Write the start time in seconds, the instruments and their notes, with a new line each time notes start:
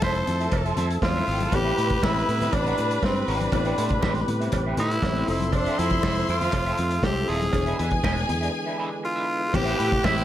Already playing: tine electric piano F3 A3 C4 E4 A4, tonewheel organ F3 A3 A4, string section A4 A5
0.02 fingered electric bass F1, clean electric guitar E4 A4 C5 E5, tenor saxophone C5, kick, snare, cowbell, high conga
0.15 muted clean electric guitar stroke, closed hi-hat
0.27 fingered electric bass F2, muted clean electric guitar stroke, closed hi-hat, low conga
0.40 clean electric guitar E4 A4 C5 E5, closed hi-hat
0.51 fingered electric bass F1, muted clean electric guitar stroke, kick, closed hi-hat, cowbell, muted conga
0.65 clean electric guitar E4 A4 C5 E5, closed hi-hat
0.76 fingered electric bass F2, clean electric guitar E4 A4 C5 E5, closed hi-hat, muted conga, low conga
0.90 muted clean electric guitar stroke, closed hi-hat
1.02 fingered electric bass E2, string section C4 C5, tenor saxophone F4, muted clean electric guitar stroke, kick, snare, cowbell, high conga
1.10 string section D4 D5
1.16 string section E4 E5, clean electric guitar E4 A4 C5 E5, high conga
1.26 fingered electric bass G#1, string section F4 F5, muted clean electric guitar stroke, open hi-hat
1.34 string section G4 G5
1.40 string section A4 A5, muted clean electric guitar stroke, closed hi-hat, high conga
1.51 fingered electric bass A1, tonewheel organ C3 G4 B4, tine electric piano G3 B3 C4 E4 A4, string section B4 B5, muted clean electric guitar stroke, kick, closed hi-hat, cowbell, muted conga
1.55 tenor saxophone G4
1.65 clean electric guitar C4 G4 B4 E5
1.76 fingered electric bass A2, clean electric guitar C4 G4 B4 E5, closed hi-hat
1.89 kick, closed hi-hat
2.02 fingered electric bass A1, clean electric guitar C4 G4 B4 E5, tenor saxophone E4, kick, snare, cowbell, high conga
2.15 muted clean electric guitar stroke, snare, closed hi-hat
2.27 fingered electric bass A2, muted clean electric guitar stroke, closed hi-hat
2.41 clean electric guitar C4 G4 B4 E5, closed hi-hat, low conga
2.52 fingered electric bass A1, tenor saxophone D4, muted clean electric guitar stroke, kick, closed hi-hat, cowbell, muted conga
2.66 clean electric guitar C4 G4 B4 E5, closed hi-hat
2.78 fingered electric bass A2, muted clean electric guitar stroke, closed hi-hat, muted conga
2.90 muted clean electric guitar stroke, closed hi-hat
3.03 fingered electric bass G2, tenor saxophone C4, kick, snare, cowbell, high conga
3.15 muted clean electric guitar stroke, closed hi-hat
3.27 fingered electric bass G#1, clean electric guitar C4 G4 B4 E5, tenor saxophone D4, open hi-hat
3.40 muted clean electric guitar stroke, closed hi-hat, high conga
3.51 fingered electric bass A1, tine electric piano G3 B3 C4 E4 A4, muted clean electric guitar stroke, kick, closed hi-hat, cowbell, muted conga
3.65 clean electric guitar C4 G4 B4 E5, closed hi-hat
3.77 fingered electric bass A2, clean electric guitar C4 G4 B4 E5, closed hi-hat
3.89 kick, closed hi-hat
4.01 fingered electric bass A1, clean electric guitar C4 G4 B4 E5, kick, snare, cowbell, high conga
4.15 muted clean electric guitar stroke, snare, closed hi-hat
4.27 fingered electric bass A2, muted clean electric guitar stroke, closed hi-hat, low conga
4.40 clean electric guitar C4 G4 B4 E5, closed hi-hat
4.52 fingered electric bass A1, muted clean electric guitar stroke, kick, closed hi-hat, cowbell, muted conga
4.66 clean electric guitar C4 G4 B4 E5
4.77 fingered electric bass A2, clean electric guitar C4 G4 B4 E5, tenor saxophone E4, closed hi-hat, muted conga, low conga
4.91 muted clean electric guitar stroke, closed hi-hat
5.03 fingered electric bass A1, tine electric piano G3 B3 C4 E4 A4, muted clean electric guitar stroke, kick, snare, cowbell, high conga
5.15 clean electric guitar C4 G4 B4 E5, closed hi-hat
5.26 fingered electric bass F1, tine electric piano F3 A3 C4 A4 E5, tonewheel organ F3 A3 A4, tenor saxophone E4, string section C5 C6, muted clean electric guitar stroke, open hi-hat
5.41 muted clean electric guitar stroke, closed hi-hat, high conga
5.52 tenor saxophone D4, muted clean electric guitar stroke, kick, closed hi-hat, cowbell, muted conga
5.66 clean electric guitar C4 F4 A4 E5, closed hi-hat
5.78 fingered electric bass F2, clean electric guitar C4 F4 A4 E5, tenor saxophone E4, closed hi-hat
5.90 muted clean electric guitar stroke, kick, closed hi-hat
6.03 fingered electric bass F1, clean electric guitar C4 F4 A4 E5, kick, snare, cowbell, high conga
6.15 muted clean electric guitar stroke, snare, closed hi-hat
6.29 fingered electric bass F2, tenor saxophone F4, muted clean electric guitar stroke, closed hi-hat
6.41 clean electric guitar C4 F4 A4 E5, closed hi-hat, low conga
6.52 fingered electric bass F1, kick, closed hi-hat, cowbell, muted conga
6.66 clean electric guitar C4 F4 A4 E5, closed hi-hat
6.77 fingered electric bass F2, closed hi-hat, muted conga
6.91 muted clean electric guitar stroke, closed hi-hat
7.03 fingered electric bass C2, tine electric piano F3 A3 C4 E4 A4, tenor saxophone G4, kick, snare, cowbell, high conga
7.16 muted clean electric guitar stroke, closed hi-hat
7.28 fingered electric bass D#1, clean electric guitar C4 F4 A4 E5, tenor saxophone G#4, open hi-hat
7.42 muted clean electric guitar stroke, closed hi-hat, high conga
7.52 fingered electric bass E1, tonewheel organ D3 E3 G#3, tine electric piano E3 G#3 B3 D4 G#4, string section G#4 G#5, muted clean electric guitar stroke, kick, closed hi-hat, cowbell, muted conga
7.66 clean electric guitar D4 G#4 B4 E5, closed hi-hat
7.78 fingered electric bass E2, clean electric guitar D4 G#4 B4 E5, closed hi-hat
7.91 muted clean electric guitar stroke, kick, closed hi-hat
8.03 fingered electric bass E1, clean electric guitar D4 G#4 B4 E5, kick, snare, cowbell, high conga
8.17 muted clean electric guitar stroke, snare, closed hi-hat
8.29 fingered electric bass E2, muted clean electric guitar stroke, closed hi-hat, low conga
8.41 clean electric guitar D4 G#4 B4 E5, closed hi-hat
8.66 clean electric guitar D4 G#4 B4 E5
8.78 clean electric guitar D4 G#4 B4 E5
8.91 muted clean electric guitar stroke
9.03 tenor saxophone F4, muted clean electric guitar stroke
9.16 clean electric guitar D4 G#4 B4 E5
9.27 muted clean electric guitar stroke
9.41 muted clean electric guitar stroke
9.52 fingered electric bass A1, tonewheel organ C3 G4 B4, tine electric piano E3 A3 B3 C4 G4, string section G4 G5, tenor saxophone G4, muted clean electric guitar stroke, kick, crash, cowbell, muted conga
9.65 clean electric guitar C4 G4 B4 E5, closed hi-hat
9.77 fingered electric bass A2, clean electric guitar C4 G4 B4 E5, closed hi-hat
9.90 muted clean electric guitar stroke, kick, closed hi-hat
10.03 fingered electric bass A1, clean electric guitar C4 G4 B4 E5, tenor saxophone E4, kick, snare, cowbell, high conga
10.17 muted clean electric guitar stroke, snare, closed hi-hat